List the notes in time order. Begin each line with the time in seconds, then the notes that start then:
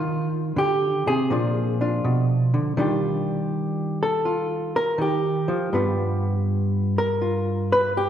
Already playing: D#3 F4
0.56 D3 G4
1.07 C3 G#4
1.30 A#2 F3 D4 F4
1.81 D4 F4
2.04 B2
2.54 D3
2.77 D#3 G3 D4 F4 G4
4.03 A4
4.25 F4
4.76 A#4
4.98 D#3 G4
5.48 F3
5.73 G2 G3 B3 F4
6.98 A#4
7.22 F4
7.72 B4
7.97 G4